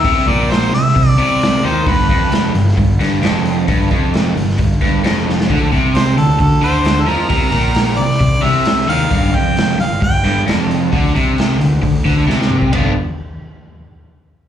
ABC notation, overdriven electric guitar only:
X:1
M:4/4
L:1/8
Q:1/4=132
K:C
V:1 name="Overdriven electric guitar" clef=bass
C, _B,,2 C, C, C,2 ^D, | G,, F,,2 G,, G,, G,, F,,2 | G,, F,,2 G,, G,, G,, F,,2 | D, C,2 D, D, D,2 F, |
C, _B,,2 C, C, C,2 ^D, | G,, F,,2 G,, G,, G,, F,,2 | D, C,2 D, D, D, C,2 | [G,,D,F,B,D] z6 z |]